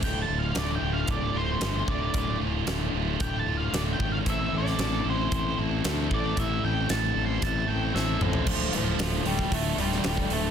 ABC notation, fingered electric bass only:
X:1
M:4/4
L:1/8
Q:1/4=114
K:Dm
V:1 name="Fingered electric bass" clef=bass
D,,, D,,, D,,, D,,, D,,, D,,, G,,, D,,, | D,,, D,,, D,,, D,,, D,,, D,,, D,,, ^G,,, | A,,, A,,, A,,, A,,, A,,, A,,, D,, A,,, | A,,, A,,, A,,, A,,, A,,, A,,, A,,, A,,, |
D,,, D,,, D,,, D,,, D,,, D,,, D,,, D,,, |]